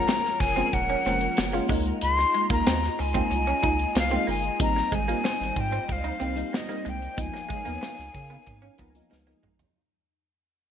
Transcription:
Already playing: fm electric piano F3 G#3 A#3 C#4 F4, analog synth pad A#4 C#5 A#5, flute A#5
0.08 clean electric guitar C4, snare, closed hi-hat
0.25 snare, closed hi-hat
0.40 sub bass F1, flute G#5, muted clean electric guitar stroke, kick, snare, open hi-hat
0.56 fm electric piano G#3 A#3 C#4 F4, clean electric guitar C4, closed hi-hat
0.73 sub bass D#1, flute F#5, muted clean electric guitar stroke, kick, closed hi-hat
0.89 clean electric guitar C#4, closed hi-hat
1.05 sub bass F1, fm electric piano F3 G#3 A#3 C#4, clean electric guitar C4, snare, closed hi-hat
1.21 closed hi-hat
1.37 sub bass F#1, muted clean electric guitar stroke, snare, closed hi-hat
1.52 fm electric piano G#3 A#3 C#4 F4, clean electric guitar A#3, closed hi-hat
1.68 sub bass C#2, fm electric piano G#3 A#3 D#4 F4, clean electric guitar G#3, analog synth pad F4 D#5, kick, open hi-hat
1.86 closed hi-hat
2.01 sub bass C#2, flute C6, closed hi-hat
2.18 muted clean electric guitar stroke, snare, closed hi-hat
2.34 clean electric guitar G#3, closed hi-hat
2.49 sub bass C#2, fm electric piano G#3 A#3 D#4 F4, clean electric guitar A#3, flute A#5, kick, closed hi-hat
2.67 sub bass D#2, clean electric guitar C4, snare, closed hi-hat
2.83 snare, closed hi-hat
2.99 sub bass C#2, flute G#5, muted clean electric guitar stroke, open hi-hat
3.14 fm electric piano G#3 A#3 D#4 F4, clean electric guitar C4, kick, closed hi-hat
3.30 sub bass C2, muted clean electric guitar stroke, closed hi-hat
3.47 clean electric guitar C#4, closed hi-hat
3.62 sub bass C#2, fm electric piano G#3 A#3 D#4 F4, clean electric guitar D#4, kick, closed hi-hat
3.79 closed hi-hat
3.95 sub bass C2, flute F5, muted clean electric guitar stroke, snare, closed hi-hat
4.10 fm electric piano G#3 A#3 D#4 F4, clean electric guitar C4, closed hi-hat
4.27 sub bass G1, clean electric guitar A#3, flute G#5, open hi-hat
4.44 closed hi-hat
4.59 sub bass G#1, fm electric piano G3 A#3 C4 D#4, analog synth pad G3 C5 D#5, flute A#5, kick, closed hi-hat
4.76 muted clean electric guitar stroke, snare
4.92 sub bass G#1, clean electric guitar G#3, flute G#5, kick, closed hi-hat
5.08 fm electric piano G3 A#3 C4 F4, clean electric guitar A#3, closed hi-hat
5.24 clean electric guitar C4, snare
5.41 sub bass G#1, snare, closed hi-hat
5.56 sub bass G#2, flute G5, muted clean electric guitar stroke, kick, closed hi-hat
5.72 clean electric guitar C4, closed hi-hat
5.88 sub bass C#2, flute F5, muted clean electric guitar stroke, kick, closed hi-hat
6.04 clean electric guitar D#4, closed hi-hat
6.20 sub bass C2, fm electric piano G3 A#3 C4 D#4, clean electric guitar C4, closed hi-hat
6.36 fm electric piano G3 A#3 C4 D#4, closed hi-hat
6.53 flute D#5, muted clean electric guitar stroke, snare
6.68 fm electric piano G3 A#3 C4 D#4, clean electric guitar A#3
6.85 sub bass C2, clean electric guitar G#3, closed hi-hat
6.89 flute G5
7.02 closed hi-hat
7.17 sub bass C#2, fm electric piano F3 A#3 B3 D#4, analog synth pad D#4 A#4 C#5 F5, kick, closed hi-hat
7.21 flute G#5
7.34 muted clean electric guitar stroke, snare, closed hi-hat
7.49 clean electric guitar G#3, kick, closed hi-hat
7.65 sub bass D#2, fm electric piano F3 A#3 B3 D#4, clean electric guitar A#3, closed hi-hat
7.81 clean electric guitar B3, snare
7.99 sub bass C#2, snare, closed hi-hat
8.14 sub bass C#3, muted clean electric guitar stroke, kick, closed hi-hat
8.30 clean electric guitar B3, closed hi-hat
8.46 sub bass G#2, muted clean electric guitar stroke, kick, closed hi-hat
8.62 clean electric guitar C#4, closed hi-hat
8.78 sub bass C#2, fm electric piano F3 A#3 B3 D#4 A#5, clean electric guitar B3, kick, closed hi-hat
8.90 fm electric piano G#5
8.95 fm electric piano F3 A#3 B3 D#4, closed hi-hat
9.09 sub bass C#2, fm electric piano F3 G#3 B3 D#4 F5, analog synth pad D#4, muted clean electric guitar stroke, snare
9.26 fm electric piano F3 G#3 B3 D#4 D#5, clean electric guitar A#3
9.43 sub bass A#1, clean electric guitar G#3, mid tom
9.59 floor tom

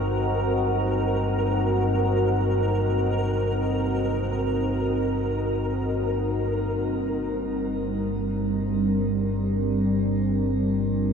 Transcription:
Already playing: synth drone G1 G2, ambient pad C4 D#4 F#4 A#4, synth texture A#4
6.61 synth drone G1 G2, ambient pad G3
7.14 ambient pad D4
9.98 ambient pad F4

